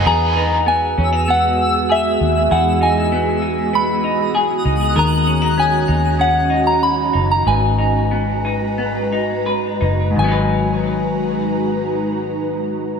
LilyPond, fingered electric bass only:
\new Staff \with { instrumentName = "Fingered electric bass" } { \clef bass \time 4/4 \key gis \minor \tempo 4 = 96 e,4. e,2 dis,8 | e,2.~ e,8 cis,8 | dis,4. dis,2 fis,,8 | gis,,2.~ gis,,8 fis,,8 |
gis,,1 | }